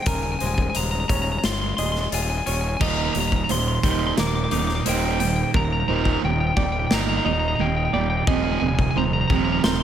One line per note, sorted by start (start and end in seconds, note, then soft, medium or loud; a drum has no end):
0.02 0.35 D#1 medium
0.02 0.07 G5 medium
0.02 closed hi-hat medium
0.06 1.78 C#3 medium
0.06 0.40 A#4 medium
0.06 0.15 G#5 loud
0.06 kick loud
0.15 0.22 G#5 medium
0.23 0.31 G#5 medium
0.32 0.38 G#5 medium
0.39 0.69 D#1 medium
0.39 0.74 G#3 medium
0.39 1.09 C5 medium
0.39 0.46 G#5 medium
0.39 closed hi-hat medium
0.47 0.54 G#5 medium
0.54 0.62 G#5 medium
0.54 kick medium
0.62 0.69 G#5 medium
0.70 0.77 G#5 medium
0.75 1.04 D#1 medium
0.75 2.47 G#3 medium
0.75 0.84 A#5 medium
0.75 closed hi-hat medium
0.84 0.91 A#5 medium
0.91 0.99 A#5 medium
1.00 1.08 A#5 medium
1.08 1.38 D#1 medium
1.08 2.45 C#4 medium
1.08 1.78 C#5 medium
1.08 1.15 A#5 medium
1.08 kick medium
1.08 closed hi-hat medium
1.15 1.21 A#5 medium
1.22 1.30 A#5 medium
1.32 1.38 A#5 medium
1.38 1.45 A#5 medium
1.44 1.72 G1 medium
1.44 2.11 F4 medium
1.44 1.53 C6 medium
1.44 snare medium
1.44 closed hi-hat medium
1.53 1.61 C6 medium
1.61 1.69 C6 medium
1.69 1.76 C6 medium
1.77 2.06 D#1 medium
1.77 2.81 G#4 medium
1.77 2.47 D#5 medium
1.77 1.85 C6 medium
1.77 closed hi-hat medium
1.86 1.92 C6 medium
1.92 2.00 C6 medium
1.92 snare soft
2.01 2.09 C6 medium
2.12 2.41 D#1 medium
2.12 2.81 F4 medium
2.12 2.22 G#5 medium
2.12 closed hi-hat medium
2.22 2.29 G#5 medium
2.30 2.37 G#5 medium
2.38 2.46 G#5 medium
2.46 2.75 D#1 medium
2.46 2.81 C#4 medium
2.46 2.81 C#5 medium
2.46 2.53 G#5 medium
2.46 closed hi-hat medium
2.53 2.60 G#5 medium
2.61 2.68 G#5 medium
2.69 2.76 G#5 medium
2.77 3.09 D#1 medium
2.77 3.13 D#2 medium
2.77 2.84 G#5 medium
2.77 crash medium
2.81 5.54 D#2 medium
2.81 3.13 A#2 medium
2.81 3.13 D#3 medium
2.81 6.31 D#5 medium
2.81 2.89 A#5 medium
2.81 kick loud
2.90 2.96 A#5 medium
2.97 3.04 A#5 medium
3.05 3.12 A#5 medium
3.13 3.43 D#1 medium
3.13 3.46 D#2 medium
3.13 4.86 A#2 medium
3.13 3.46 A#2 medium
3.13 3.20 A#5 medium
3.13 closed hi-hat medium
3.20 3.27 A#5 medium
3.28 3.35 A#5 medium
3.32 kick medium
3.36 3.44 A#5 medium
3.44 3.51 A#5 medium
3.49 3.78 D#1 medium
3.49 3.80 D#2 medium
3.49 3.81 A#2 medium
3.49 6.23 D#3 medium
3.49 4.17 C5 medium
3.49 3.59 C6 medium
3.49 closed hi-hat medium
3.59 3.67 C6 medium
3.68 3.74 C6 medium
3.75 3.83 C6 medium
3.83 4.12 D#1 medium
3.83 4.16 D#2 medium
3.83 4.16 A#2 medium
3.83 4.16 D#3 medium
3.83 5.19 G3 medium
3.83 3.91 C6 medium
3.83 kick medium
3.83 closed hi-hat medium
3.91 3.99 C6 medium
3.99 4.06 C6 medium
4.07 4.14 C6 medium
4.18 4.46 D#1 medium
4.18 4.49 D#2 medium
4.18 4.49 A#2 medium
4.18 4.85 A#3 medium
4.18 4.86 A#4 medium
4.18 4.27 D6 loud
4.18 snare loud
4.18 closed hi-hat medium
4.27 4.35 D6 medium
4.35 4.43 D6 medium
4.44 4.51 D6 medium
4.51 4.80 D#1 medium
4.51 4.83 D#2 medium
4.51 4.83 A#2 medium
4.51 7.26 D#4 medium
4.51 4.59 D6 medium
4.51 closed hi-hat medium
4.59 4.67 D6 medium
4.67 4.75 D6 medium
4.67 snare soft
4.75 4.83 D6 medium
4.86 5.43 D#1 medium
4.86 5.18 D#2 medium
4.86 5.18 A#2 medium
4.86 5.19 D#3 medium
4.86 6.57 A#3 medium
4.86 5.54 C5 medium
4.86 4.97 G5 medium
4.86 closed hi-hat loud
4.97 5.05 G5 medium
5.05 5.12 G5 medium
5.12 5.19 G5 medium
5.20 5.51 D#2 medium
5.20 5.51 A#2 medium
5.20 6.56 G3 medium
5.20 5.28 G5 medium
5.20 closed hi-hat medium
5.28 5.36 G5 medium
5.36 5.43 G5 medium
5.43 5.51 G5 medium
5.54 5.83 D#1 medium
5.54 5.85 D#2 medium
5.54 7.26 D#2 medium
5.54 5.86 A#2 medium
5.54 5.88 A#4 medium
5.54 5.64 A#5 medium
5.54 kick loud
5.65 5.72 A#5 medium
5.72 5.79 A#5 medium
5.80 5.88 A#5 medium
5.88 6.17 D#1 medium
5.88 6.21 D#2 medium
5.88 6.21 A#2 medium
5.88 7.60 A#2 medium
5.88 6.21 D#3 medium
5.88 6.57 C5 medium
5.88 5.95 A#5 medium
5.96 6.04 A#5 medium
6.04 6.12 A#5 medium
6.04 kick medium
6.13 6.21 A#5 medium
6.23 6.51 D#1 medium
6.23 6.54 D#2 medium
6.23 6.54 A#2 medium
6.23 7.94 D#3 medium
6.23 6.31 G5 medium
6.32 6.39 G5 medium
6.40 6.46 G5 medium
6.47 6.54 G5 medium
6.56 6.85 D#1 medium
6.56 6.88 D#2 medium
6.56 6.88 A#2 medium
6.56 7.93 G3 medium
6.56 7.25 D5 medium
6.56 6.64 G5 medium
6.56 kick medium
6.64 6.72 G5 medium
6.72 6.79 G5 medium
6.79 6.86 G5 medium
6.87 6.94 G5 medium
6.91 7.19 G1 medium
6.91 7.23 D#2 medium
6.91 7.24 A#2 medium
6.91 7.24 D#3 medium
6.91 7.59 A#3 medium
6.91 7.00 A#5 loud
6.91 snare loud
7.01 7.08 A#5 medium
7.09 7.17 A#5 medium
7.17 7.25 A#5 medium
7.25 7.54 D#1 medium
7.25 7.56 D#2 medium
7.25 7.56 A#2 medium
7.25 8.29 D#4 medium
7.25 7.93 D#5 medium
7.25 7.33 A#5 medium
7.33 7.39 A#5 medium
7.39 7.47 A#5 medium
7.48 7.55 A#5 medium
7.55 7.88 D#1 medium
7.55 7.90 D#2 medium
7.55 7.63 A#5 medium
7.60 7.91 A#2 medium
7.60 8.28 A#3 medium
7.60 7.68 G5 medium
7.68 7.76 G5 medium
7.76 7.84 G5 medium
7.85 7.93 G5 medium
7.93 8.22 D#1 medium
7.93 8.25 D#2 medium
7.93 8.25 A#2 medium
7.93 8.28 G3 medium
7.93 8.27 D5 medium
7.93 8.01 G5 medium
8.01 8.09 G5 medium
8.10 8.17 G5 medium
8.17 8.25 G5 medium
8.27 8.56 D#1 medium
8.27 8.60 F2 medium
8.27 9.83 F2 medium
8.27 8.60 C3 medium
8.27 8.61 F3 loud
8.27 8.96 D#5 medium
8.27 8.35 G#5 loud
8.27 kick loud
8.36 8.43 G#5 medium
8.44 8.51 G#5 medium
8.52 8.59 G#5 medium
8.60 8.90 D#1 medium
8.60 8.93 F2 medium
8.60 9.83 C3 medium
8.60 8.93 C3 medium
8.60 8.68 G#5 medium
8.68 8.74 G#5 medium
8.75 8.81 G#5 medium
8.75 kick medium
8.82 8.90 G#5 medium
8.91 8.98 G#5 medium
8.96 9.24 D#1 loud
8.96 9.27 F2 medium
8.96 9.27 C3 medium
8.96 9.83 F3 medium
8.96 9.63 C5 medium
8.96 9.05 A#5 medium
9.13 9.20 A#5 medium
9.21 9.27 A#5 medium
9.28 9.59 D#1 medium
9.28 9.63 F2 medium
9.28 9.63 C3 medium
9.28 9.63 F3 loud
9.28 9.83 G#3 medium
9.28 9.35 A#5 medium
9.28 kick medium
9.36 9.43 A#5 medium
9.45 9.52 A#5 medium
9.52 9.59 A#5 medium
9.60 9.64 A#5 medium
9.64 9.83 D#1 medium
9.64 9.83 F2 medium
9.64 9.83 C3 medium
9.64 9.83 C4 medium
9.64 9.83 A#4 medium
9.64 9.72 C6 loud
9.64 snare loud
9.72 9.80 C6 medium